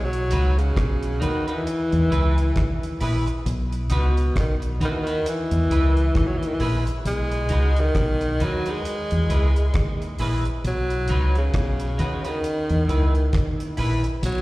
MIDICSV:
0, 0, Header, 1, 6, 480
1, 0, Start_track
1, 0, Tempo, 898204
1, 1848, Time_signature, 4, 2, 24, 8
1, 7703, End_track
2, 0, Start_track
2, 0, Title_t, "Clean electric guitar"
2, 0, Program_c, 0, 27
2, 168, Note_on_c, 0, 63, 71
2, 173, Note_on_c, 0, 66, 81
2, 176, Note_on_c, 0, 71, 81
2, 290, Note_off_c, 0, 63, 0
2, 292, Note_off_c, 0, 66, 0
2, 294, Note_off_c, 0, 71, 0
2, 640, Note_on_c, 0, 63, 72
2, 647, Note_on_c, 0, 66, 79
2, 654, Note_on_c, 0, 71, 77
2, 766, Note_off_c, 0, 63, 0
2, 769, Note_off_c, 0, 66, 0
2, 773, Note_off_c, 0, 71, 0
2, 787, Note_on_c, 0, 71, 62
2, 791, Note_on_c, 0, 66, 50
2, 796, Note_on_c, 0, 63, 48
2, 855, Note_off_c, 0, 71, 0
2, 857, Note_off_c, 0, 66, 0
2, 860, Note_off_c, 0, 63, 0
2, 1121, Note_on_c, 0, 64, 74
2, 1129, Note_on_c, 0, 68, 70
2, 1134, Note_on_c, 0, 71, 84
2, 1246, Note_off_c, 0, 64, 0
2, 1251, Note_off_c, 0, 68, 0
2, 1253, Note_off_c, 0, 71, 0
2, 1606, Note_on_c, 0, 64, 80
2, 1612, Note_on_c, 0, 68, 75
2, 1615, Note_on_c, 0, 71, 91
2, 1729, Note_off_c, 0, 64, 0
2, 1732, Note_off_c, 0, 68, 0
2, 1733, Note_off_c, 0, 71, 0
2, 2083, Note_on_c, 0, 63, 81
2, 2090, Note_on_c, 0, 66, 83
2, 2095, Note_on_c, 0, 71, 91
2, 2207, Note_off_c, 0, 63, 0
2, 2211, Note_off_c, 0, 66, 0
2, 2214, Note_off_c, 0, 71, 0
2, 2568, Note_on_c, 0, 63, 70
2, 2573, Note_on_c, 0, 66, 87
2, 2579, Note_on_c, 0, 71, 79
2, 2690, Note_off_c, 0, 63, 0
2, 2692, Note_off_c, 0, 66, 0
2, 2695, Note_off_c, 0, 71, 0
2, 2707, Note_on_c, 0, 71, 52
2, 2713, Note_on_c, 0, 66, 52
2, 2718, Note_on_c, 0, 63, 48
2, 2775, Note_off_c, 0, 71, 0
2, 2778, Note_off_c, 0, 66, 0
2, 2781, Note_off_c, 0, 63, 0
2, 3046, Note_on_c, 0, 64, 66
2, 3050, Note_on_c, 0, 68, 66
2, 3056, Note_on_c, 0, 71, 75
2, 3169, Note_off_c, 0, 64, 0
2, 3171, Note_off_c, 0, 68, 0
2, 3174, Note_off_c, 0, 71, 0
2, 3527, Note_on_c, 0, 64, 87
2, 3531, Note_on_c, 0, 68, 89
2, 3537, Note_on_c, 0, 71, 97
2, 3649, Note_off_c, 0, 64, 0
2, 3651, Note_off_c, 0, 68, 0
2, 3654, Note_off_c, 0, 71, 0
2, 4007, Note_on_c, 0, 63, 75
2, 4012, Note_on_c, 0, 66, 77
2, 4018, Note_on_c, 0, 71, 80
2, 4129, Note_off_c, 0, 63, 0
2, 4132, Note_off_c, 0, 66, 0
2, 4135, Note_off_c, 0, 71, 0
2, 4487, Note_on_c, 0, 63, 76
2, 4494, Note_on_c, 0, 66, 77
2, 4497, Note_on_c, 0, 71, 69
2, 4609, Note_off_c, 0, 63, 0
2, 4613, Note_off_c, 0, 66, 0
2, 4614, Note_off_c, 0, 71, 0
2, 4629, Note_on_c, 0, 71, 58
2, 4634, Note_on_c, 0, 66, 52
2, 4640, Note_on_c, 0, 63, 42
2, 4696, Note_off_c, 0, 71, 0
2, 4698, Note_off_c, 0, 66, 0
2, 4701, Note_off_c, 0, 63, 0
2, 4965, Note_on_c, 0, 64, 69
2, 4971, Note_on_c, 0, 68, 76
2, 4975, Note_on_c, 0, 71, 76
2, 5088, Note_off_c, 0, 64, 0
2, 5091, Note_off_c, 0, 68, 0
2, 5093, Note_off_c, 0, 71, 0
2, 5448, Note_on_c, 0, 64, 77
2, 5452, Note_on_c, 0, 68, 89
2, 5458, Note_on_c, 0, 71, 98
2, 5570, Note_off_c, 0, 64, 0
2, 5571, Note_off_c, 0, 68, 0
2, 5574, Note_off_c, 0, 71, 0
2, 5927, Note_on_c, 0, 63, 83
2, 5932, Note_on_c, 0, 66, 80
2, 5938, Note_on_c, 0, 71, 90
2, 6049, Note_off_c, 0, 63, 0
2, 6051, Note_off_c, 0, 66, 0
2, 6055, Note_off_c, 0, 71, 0
2, 6403, Note_on_c, 0, 63, 66
2, 6409, Note_on_c, 0, 66, 71
2, 6413, Note_on_c, 0, 71, 80
2, 6527, Note_off_c, 0, 63, 0
2, 6530, Note_off_c, 0, 66, 0
2, 6532, Note_off_c, 0, 71, 0
2, 6544, Note_on_c, 0, 71, 65
2, 6551, Note_on_c, 0, 66, 52
2, 6557, Note_on_c, 0, 63, 54
2, 6613, Note_off_c, 0, 71, 0
2, 6616, Note_off_c, 0, 66, 0
2, 6619, Note_off_c, 0, 63, 0
2, 6884, Note_on_c, 0, 64, 61
2, 6886, Note_on_c, 0, 68, 69
2, 6893, Note_on_c, 0, 71, 73
2, 7007, Note_off_c, 0, 64, 0
2, 7008, Note_off_c, 0, 68, 0
2, 7012, Note_off_c, 0, 71, 0
2, 7359, Note_on_c, 0, 64, 81
2, 7364, Note_on_c, 0, 68, 79
2, 7369, Note_on_c, 0, 71, 98
2, 7485, Note_off_c, 0, 64, 0
2, 7487, Note_off_c, 0, 68, 0
2, 7490, Note_off_c, 0, 71, 0
2, 7703, End_track
3, 0, Start_track
3, 0, Title_t, "Tenor saxophone"
3, 0, Program_c, 1, 66
3, 22, Note_on_c, 1, 54, 109
3, 311, Note_on_c, 1, 49, 94
3, 319, Note_off_c, 1, 54, 0
3, 650, Note_on_c, 1, 51, 95
3, 658, Note_off_c, 1, 49, 0
3, 790, Note_off_c, 1, 51, 0
3, 793, Note_on_c, 1, 52, 93
3, 1589, Note_off_c, 1, 52, 0
3, 2105, Note_on_c, 1, 47, 73
3, 2321, Note_off_c, 1, 47, 0
3, 2345, Note_on_c, 1, 51, 70
3, 2431, Note_off_c, 1, 51, 0
3, 2588, Note_on_c, 1, 51, 96
3, 2619, Note_on_c, 1, 52, 88
3, 2627, Note_off_c, 1, 51, 0
3, 2677, Note_on_c, 1, 51, 104
3, 2685, Note_off_c, 1, 52, 0
3, 2818, Note_off_c, 1, 51, 0
3, 2825, Note_on_c, 1, 52, 97
3, 3347, Note_on_c, 1, 54, 89
3, 3355, Note_off_c, 1, 52, 0
3, 3406, Note_on_c, 1, 52, 84
3, 3414, Note_off_c, 1, 54, 0
3, 3460, Note_on_c, 1, 51, 92
3, 3468, Note_off_c, 1, 52, 0
3, 3495, Note_on_c, 1, 52, 89
3, 3503, Note_off_c, 1, 51, 0
3, 3532, Note_off_c, 1, 52, 0
3, 3780, Note_on_c, 1, 56, 113
3, 4170, Note_on_c, 1, 51, 106
3, 4178, Note_off_c, 1, 56, 0
3, 4509, Note_on_c, 1, 54, 100
3, 4517, Note_off_c, 1, 51, 0
3, 4649, Note_on_c, 1, 56, 106
3, 4657, Note_off_c, 1, 54, 0
3, 5458, Note_off_c, 1, 56, 0
3, 5702, Note_on_c, 1, 54, 106
3, 6054, Note_off_c, 1, 54, 0
3, 6080, Note_on_c, 1, 49, 100
3, 6563, Note_on_c, 1, 51, 91
3, 6571, Note_off_c, 1, 49, 0
3, 7374, Note_off_c, 1, 51, 0
3, 7616, Note_on_c, 1, 54, 105
3, 7703, Note_off_c, 1, 54, 0
3, 7703, End_track
4, 0, Start_track
4, 0, Title_t, "Fingered electric bass"
4, 0, Program_c, 2, 33
4, 0, Note_on_c, 2, 35, 103
4, 140, Note_off_c, 2, 35, 0
4, 175, Note_on_c, 2, 37, 89
4, 380, Note_off_c, 2, 37, 0
4, 410, Note_on_c, 2, 35, 83
4, 618, Note_off_c, 2, 35, 0
4, 649, Note_on_c, 2, 39, 85
4, 857, Note_off_c, 2, 39, 0
4, 1030, Note_on_c, 2, 40, 87
4, 1116, Note_off_c, 2, 40, 0
4, 1130, Note_on_c, 2, 37, 85
4, 1337, Note_off_c, 2, 37, 0
4, 1370, Note_on_c, 2, 39, 93
4, 1578, Note_off_c, 2, 39, 0
4, 1609, Note_on_c, 2, 34, 82
4, 1731, Note_off_c, 2, 34, 0
4, 1847, Note_on_c, 2, 35, 101
4, 2056, Note_off_c, 2, 35, 0
4, 2090, Note_on_c, 2, 37, 81
4, 2298, Note_off_c, 2, 37, 0
4, 2330, Note_on_c, 2, 35, 83
4, 2538, Note_off_c, 2, 35, 0
4, 2567, Note_on_c, 2, 39, 94
4, 2776, Note_off_c, 2, 39, 0
4, 2947, Note_on_c, 2, 40, 92
4, 3034, Note_off_c, 2, 40, 0
4, 3046, Note_on_c, 2, 37, 93
4, 3255, Note_off_c, 2, 37, 0
4, 3289, Note_on_c, 2, 39, 105
4, 3497, Note_off_c, 2, 39, 0
4, 3528, Note_on_c, 2, 34, 96
4, 3651, Note_off_c, 2, 34, 0
4, 3769, Note_on_c, 2, 35, 106
4, 3977, Note_off_c, 2, 35, 0
4, 4007, Note_on_c, 2, 37, 86
4, 4216, Note_off_c, 2, 37, 0
4, 4249, Note_on_c, 2, 35, 88
4, 4457, Note_off_c, 2, 35, 0
4, 4493, Note_on_c, 2, 39, 82
4, 4699, Note_off_c, 2, 39, 0
4, 4872, Note_on_c, 2, 40, 81
4, 4957, Note_off_c, 2, 40, 0
4, 4966, Note_on_c, 2, 37, 89
4, 5175, Note_off_c, 2, 37, 0
4, 5208, Note_on_c, 2, 39, 104
4, 5416, Note_off_c, 2, 39, 0
4, 5448, Note_on_c, 2, 34, 87
4, 5570, Note_off_c, 2, 34, 0
4, 5688, Note_on_c, 2, 35, 104
4, 5896, Note_off_c, 2, 35, 0
4, 5931, Note_on_c, 2, 37, 86
4, 6138, Note_off_c, 2, 37, 0
4, 6168, Note_on_c, 2, 35, 88
4, 6376, Note_off_c, 2, 35, 0
4, 6408, Note_on_c, 2, 39, 90
4, 6616, Note_off_c, 2, 39, 0
4, 6788, Note_on_c, 2, 40, 86
4, 6874, Note_off_c, 2, 40, 0
4, 6884, Note_on_c, 2, 37, 89
4, 7094, Note_off_c, 2, 37, 0
4, 7127, Note_on_c, 2, 39, 98
4, 7335, Note_off_c, 2, 39, 0
4, 7364, Note_on_c, 2, 34, 81
4, 7488, Note_off_c, 2, 34, 0
4, 7603, Note_on_c, 2, 35, 107
4, 7703, Note_off_c, 2, 35, 0
4, 7703, End_track
5, 0, Start_track
5, 0, Title_t, "Muted clean electric guitar strokes"
5, 1746, Note_on_c, 9, 29, 55
5, 1800, Note_off_c, 9, 29, 0
5, 3668, Note_on_c, 9, 29, 48
5, 3721, Note_off_c, 9, 29, 0
5, 5592, Note_on_c, 9, 29, 42
5, 5646, Note_off_c, 9, 29, 0
5, 7504, Note_on_c, 9, 29, 47
5, 7557, Note_off_c, 9, 29, 0
5, 7703, End_track
6, 0, Start_track
6, 0, Title_t, "Drums"
6, 70, Note_on_c, 9, 42, 49
6, 123, Note_off_c, 9, 42, 0
6, 164, Note_on_c, 9, 42, 78
6, 217, Note_off_c, 9, 42, 0
6, 313, Note_on_c, 9, 42, 46
6, 367, Note_off_c, 9, 42, 0
6, 409, Note_on_c, 9, 36, 95
6, 410, Note_on_c, 9, 42, 84
6, 413, Note_on_c, 9, 37, 109
6, 463, Note_off_c, 9, 36, 0
6, 463, Note_off_c, 9, 42, 0
6, 466, Note_off_c, 9, 37, 0
6, 549, Note_on_c, 9, 42, 50
6, 602, Note_off_c, 9, 42, 0
6, 651, Note_on_c, 9, 42, 70
6, 704, Note_off_c, 9, 42, 0
6, 789, Note_on_c, 9, 42, 53
6, 843, Note_off_c, 9, 42, 0
6, 892, Note_on_c, 9, 42, 79
6, 946, Note_off_c, 9, 42, 0
6, 1028, Note_on_c, 9, 42, 51
6, 1082, Note_off_c, 9, 42, 0
6, 1133, Note_on_c, 9, 42, 73
6, 1186, Note_off_c, 9, 42, 0
6, 1271, Note_on_c, 9, 42, 46
6, 1325, Note_off_c, 9, 42, 0
6, 1367, Note_on_c, 9, 42, 91
6, 1368, Note_on_c, 9, 36, 112
6, 1376, Note_on_c, 9, 37, 104
6, 1420, Note_off_c, 9, 42, 0
6, 1422, Note_off_c, 9, 36, 0
6, 1429, Note_off_c, 9, 37, 0
6, 1514, Note_on_c, 9, 42, 50
6, 1568, Note_off_c, 9, 42, 0
6, 1606, Note_on_c, 9, 46, 64
6, 1660, Note_off_c, 9, 46, 0
6, 1749, Note_on_c, 9, 42, 50
6, 1802, Note_off_c, 9, 42, 0
6, 1851, Note_on_c, 9, 42, 91
6, 1904, Note_off_c, 9, 42, 0
6, 1991, Note_on_c, 9, 42, 47
6, 2044, Note_off_c, 9, 42, 0
6, 2083, Note_on_c, 9, 42, 82
6, 2136, Note_off_c, 9, 42, 0
6, 2230, Note_on_c, 9, 42, 45
6, 2284, Note_off_c, 9, 42, 0
6, 2328, Note_on_c, 9, 36, 103
6, 2330, Note_on_c, 9, 42, 88
6, 2333, Note_on_c, 9, 37, 108
6, 2382, Note_off_c, 9, 36, 0
6, 2383, Note_off_c, 9, 42, 0
6, 2387, Note_off_c, 9, 37, 0
6, 2469, Note_on_c, 9, 42, 50
6, 2523, Note_off_c, 9, 42, 0
6, 2571, Note_on_c, 9, 42, 73
6, 2625, Note_off_c, 9, 42, 0
6, 2708, Note_on_c, 9, 42, 54
6, 2762, Note_off_c, 9, 42, 0
6, 2812, Note_on_c, 9, 42, 85
6, 2865, Note_off_c, 9, 42, 0
6, 2946, Note_on_c, 9, 42, 53
6, 3000, Note_off_c, 9, 42, 0
6, 3052, Note_on_c, 9, 42, 77
6, 3105, Note_off_c, 9, 42, 0
6, 3189, Note_on_c, 9, 42, 44
6, 3243, Note_off_c, 9, 42, 0
6, 3286, Note_on_c, 9, 42, 82
6, 3288, Note_on_c, 9, 36, 119
6, 3295, Note_on_c, 9, 37, 106
6, 3340, Note_off_c, 9, 42, 0
6, 3341, Note_off_c, 9, 36, 0
6, 3348, Note_off_c, 9, 37, 0
6, 3434, Note_on_c, 9, 42, 52
6, 3487, Note_off_c, 9, 42, 0
6, 3526, Note_on_c, 9, 46, 69
6, 3579, Note_off_c, 9, 46, 0
6, 3671, Note_on_c, 9, 42, 50
6, 3724, Note_off_c, 9, 42, 0
6, 3770, Note_on_c, 9, 42, 96
6, 3824, Note_off_c, 9, 42, 0
6, 3909, Note_on_c, 9, 42, 47
6, 3962, Note_off_c, 9, 42, 0
6, 4002, Note_on_c, 9, 42, 82
6, 4055, Note_off_c, 9, 42, 0
6, 4149, Note_on_c, 9, 42, 47
6, 4203, Note_off_c, 9, 42, 0
6, 4248, Note_on_c, 9, 36, 101
6, 4248, Note_on_c, 9, 42, 86
6, 4251, Note_on_c, 9, 37, 100
6, 4301, Note_off_c, 9, 36, 0
6, 4301, Note_off_c, 9, 42, 0
6, 4304, Note_off_c, 9, 37, 0
6, 4387, Note_on_c, 9, 42, 49
6, 4440, Note_off_c, 9, 42, 0
6, 4490, Note_on_c, 9, 42, 69
6, 4543, Note_off_c, 9, 42, 0
6, 4626, Note_on_c, 9, 42, 56
6, 4680, Note_off_c, 9, 42, 0
6, 4731, Note_on_c, 9, 42, 81
6, 4784, Note_off_c, 9, 42, 0
6, 4866, Note_on_c, 9, 42, 52
6, 4920, Note_off_c, 9, 42, 0
6, 4970, Note_on_c, 9, 42, 70
6, 5024, Note_off_c, 9, 42, 0
6, 5110, Note_on_c, 9, 42, 45
6, 5163, Note_off_c, 9, 42, 0
6, 5204, Note_on_c, 9, 42, 94
6, 5207, Note_on_c, 9, 36, 98
6, 5213, Note_on_c, 9, 37, 99
6, 5257, Note_off_c, 9, 42, 0
6, 5261, Note_off_c, 9, 36, 0
6, 5266, Note_off_c, 9, 37, 0
6, 5354, Note_on_c, 9, 42, 49
6, 5407, Note_off_c, 9, 42, 0
6, 5443, Note_on_c, 9, 46, 65
6, 5496, Note_off_c, 9, 46, 0
6, 5586, Note_on_c, 9, 42, 50
6, 5639, Note_off_c, 9, 42, 0
6, 5689, Note_on_c, 9, 42, 83
6, 5742, Note_off_c, 9, 42, 0
6, 5827, Note_on_c, 9, 42, 49
6, 5880, Note_off_c, 9, 42, 0
6, 5919, Note_on_c, 9, 42, 76
6, 5973, Note_off_c, 9, 42, 0
6, 6067, Note_on_c, 9, 42, 44
6, 6120, Note_off_c, 9, 42, 0
6, 6165, Note_on_c, 9, 42, 76
6, 6166, Note_on_c, 9, 36, 100
6, 6168, Note_on_c, 9, 37, 116
6, 6218, Note_off_c, 9, 42, 0
6, 6219, Note_off_c, 9, 36, 0
6, 6222, Note_off_c, 9, 37, 0
6, 6304, Note_on_c, 9, 42, 55
6, 6357, Note_off_c, 9, 42, 0
6, 6407, Note_on_c, 9, 42, 71
6, 6461, Note_off_c, 9, 42, 0
6, 6544, Note_on_c, 9, 42, 56
6, 6598, Note_off_c, 9, 42, 0
6, 6648, Note_on_c, 9, 42, 77
6, 6701, Note_off_c, 9, 42, 0
6, 6785, Note_on_c, 9, 42, 47
6, 6838, Note_off_c, 9, 42, 0
6, 6890, Note_on_c, 9, 42, 75
6, 6944, Note_off_c, 9, 42, 0
6, 7026, Note_on_c, 9, 42, 44
6, 7080, Note_off_c, 9, 42, 0
6, 7123, Note_on_c, 9, 42, 89
6, 7124, Note_on_c, 9, 36, 114
6, 7132, Note_on_c, 9, 37, 102
6, 7176, Note_off_c, 9, 42, 0
6, 7178, Note_off_c, 9, 36, 0
6, 7185, Note_off_c, 9, 37, 0
6, 7269, Note_on_c, 9, 42, 52
6, 7322, Note_off_c, 9, 42, 0
6, 7360, Note_on_c, 9, 46, 67
6, 7413, Note_off_c, 9, 46, 0
6, 7503, Note_on_c, 9, 42, 49
6, 7557, Note_off_c, 9, 42, 0
6, 7605, Note_on_c, 9, 42, 89
6, 7606, Note_on_c, 9, 58, 70
6, 7658, Note_off_c, 9, 42, 0
6, 7659, Note_off_c, 9, 58, 0
6, 7703, End_track
0, 0, End_of_file